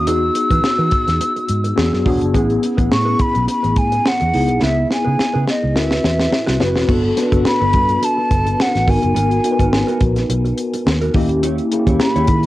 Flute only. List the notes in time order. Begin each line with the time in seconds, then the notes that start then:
0.07 E6
2.93 C#6
3.21 B5
3.50 B5
3.78 G#5
4.08 F#5
4.64 E5
4.93 G#5
5.49 D#5
5.78 E5
7.47 B5
8.05 A5
8.62 F#5
8.90 G#5
12.01 B5